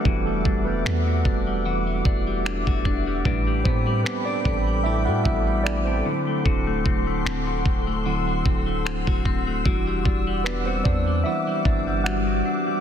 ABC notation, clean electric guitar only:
X:1
M:4/4
L:1/16
Q:"Swing 16ths" 1/4=75
K:Em
V:1 name="Clean electric guitar"
[E,G,DF] G, D G, D F D G, [E,F] G, D G, D F D G, | [A,,D] G, B, G, B, D B, G, [A,,D] G, B, G, B, D D, A, | [D,F] A, C A, C F C A, [D,F] A, C A, C F C A, | [E,F] G, D G, D F D G, [E,F] G, D G, D F D G, |]